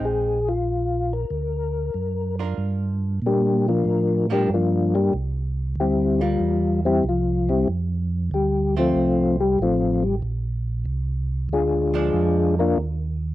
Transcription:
Already playing: G#3 C4 D#4
0.00 A#1
0.05 G#4
0.49 F4
1.13 A#4
1.31 D2
1.94 F#2
2.39 D4 F4 A#4
2.58 G2
3.22 A#2
3.26 G3 A#3 D4 G4
3.68 F3 D4 F4 A#4
3.85 A2
4.30 F3 G3 A#3 D4 G4 A#4
4.49 G2
4.54 F3 A#3 D4 F4
4.95 G3 A#3 D4 G4
5.13 C2
5.76 D2
5.80 G3 C4 E4 G4
6.21 G3 A#3 F4
6.40 E2
6.85 G3 C4 E4 G4
7.04 C2
7.09 F3 F4
7.49 G3 C4 E4 G4
7.68 F2
8.31 D2 G3 G4
8.76 F3 A3 C4 F4
8.95 C2
9.40 G3 G4
9.59 A1 F3 A3 F4
9.63 C4
10.03 G3 G4
10.22 A#1
10.85 C2
11.49 D2 G#3
11.53 D4 F4 G#4
11.94 F3 G#3 D4
12.14 F2
12.59 A#3 D4 F4 A#4
12.77 D#2

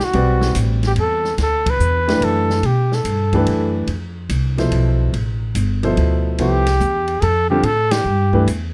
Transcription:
0.01 F#4, muted upright bass stroke
0.13 B1 G3 C4 F#4 B4 D5, ride
0.41 snare
0.55 A1, hi-hat pedal, ride
0.83 G4, snare, ride
0.96 E2 A4, ride
1.24 snare
1.38 D2, snare, ride
1.42 A4
1.66 B4, kick, ride
1.80 E2, hi-hat pedal
2.08 E3 A3 D4 G4 B4, snare, ride
2.20 F#2 A4, ride
2.50 snare
2.62 B2 G4, ride
2.92 A4, snare
3.04 G2, hi-hat pedal, ride
3.33 E3 A3 D4 G4 B4, kick, ride
3.47 F#2, ride
3.87 F2, ride
4.29 C2, hi-hat pedal, ride
4.57 B2 F3 E4 A4 C5, snare, ride
4.71 B1, ride
5.13 A1, ride
5.55 G1, hi-hat pedal, ride
5.83 B2 F3 E4 A4 C5, ride
5.97 D2, ride
6.38 C2 F3 B3 E4 G4 A4 C5, ride
6.67 snare, ride
6.80 E2, hi-hat pedal
7.08 ride
7.20 F2 G#4 A4, ride
7.50 D3 G3 C4 F4 G4 A4
7.63 A2 A4, ride
7.91 G4, snare, ride
8.04 G2
8.33 E3 A3 D4 G4 B4, kick
8.46 E2, hi-hat pedal, ride

